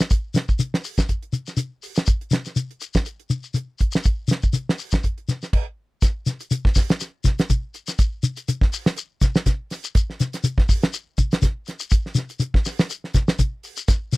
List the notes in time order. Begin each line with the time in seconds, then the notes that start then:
0.00 snare
0.10 kick, closed hi-hat, shekere
0.34 snare, closed hi-hat, shekere
0.49 kick, shekere
0.59 closed hi-hat, shekere
0.74 snare
0.84 open hi-hat, shekere
0.98 kick, snare, closed hi-hat, shekere
1.09 kick, closed hi-hat, shekere
1.23 closed hi-hat
1.33 closed hi-hat, shekere
1.47 snare, shekere
1.57 closed hi-hat, shekere
1.83 open hi-hat, shekere
1.95 snare, closed hi-hat, shekere
2.06 kick, closed hi-hat, shekere
2.21 closed hi-hat
2.31 snare, closed hi-hat, shekere
2.45 snare, closed hi-hat, shekere
2.56 closed hi-hat, shekere
2.71 closed hi-hat
2.81 closed hi-hat, shekere
2.94 kick, snare, shekere
3.05 closed hi-hat, shekere
3.20 closed hi-hat
3.30 closed hi-hat, shekere
3.43 shekere
3.54 closed hi-hat, shekere
3.79 kick, closed hi-hat, shekere
3.92 snare, closed hi-hat, shekere
4.04 kick, closed hi-hat, shekere
4.28 snare, closed hi-hat, shekere
4.42 kick, shekere
4.53 closed hi-hat, shekere
4.69 snare
4.79 open hi-hat, shekere
4.91 kick, snare, closed hi-hat, shekere
5.03 kick, closed hi-hat, shekere
5.18 closed hi-hat
5.29 snare, closed hi-hat, shekere
5.42 snare, shekere
5.53 kick, crash
6.02 kick, snare, closed hi-hat, shekere
6.26 snare, closed hi-hat, shekere
6.40 closed hi-hat, shekere
6.51 closed hi-hat, shekere
6.65 kick, snare
6.75 kick, snare, open hi-hat, shekere
6.89 snare, closed hi-hat, shekere
7.00 snare, closed hi-hat, shekere
7.24 kick, snare, closed hi-hat, shekere
7.39 snare, closed hi-hat, shekere
7.50 kick, closed hi-hat, shekere
7.74 closed hi-hat, shekere
7.87 snare, closed hi-hat, shekere
7.99 kick, closed hi-hat, shekere
8.23 closed hi-hat, shekere
8.37 closed hi-hat, shekere
8.48 closed hi-hat, shekere
8.61 kick, snare
8.72 open hi-hat, shekere
8.86 snare, shekere
8.97 closed hi-hat, shekere
9.21 kick, snare, closed hi-hat, shekere
9.35 snare, shekere
9.46 kick, snare, closed hi-hat, shekere
9.70 snare, open hi-hat, shekere
9.84 closed hi-hat, shekere
9.95 kick, closed hi-hat, shekere
10.10 snare
10.20 snare, closed hi-hat, shekere
10.33 snare, closed hi-hat, shekere
10.44 closed hi-hat, shekere
10.58 kick, snare
10.69 kick, open hi-hat, shekere
10.82 snare, closed hi-hat, shekere
10.93 closed hi-hat, shekere
11.18 kick, closed hi-hat, shekere
11.32 snare, closed hi-hat, shekere
11.42 kick, snare, closed hi-hat, shekere
11.66 snare, closed hi-hat, shekere
11.79 closed hi-hat, shekere
11.91 kick, closed hi-hat, shekere
12.06 snare
12.15 snare, closed hi-hat, shekere
12.29 closed hi-hat, shekere
12.40 closed hi-hat, shekere
12.54 kick, snare
12.65 snare, open hi-hat, shekere
12.79 snare, shekere
12.90 closed hi-hat, shekere
13.04 snare
13.14 kick, snare, closed hi-hat, shekere
13.28 snare, shekere
13.39 kick, closed hi-hat, shekere
13.63 open hi-hat, shekere
13.77 closed hi-hat, shekere
13.88 kick, snare, closed hi-hat, shekere
14.13 snare, closed hi-hat, shekere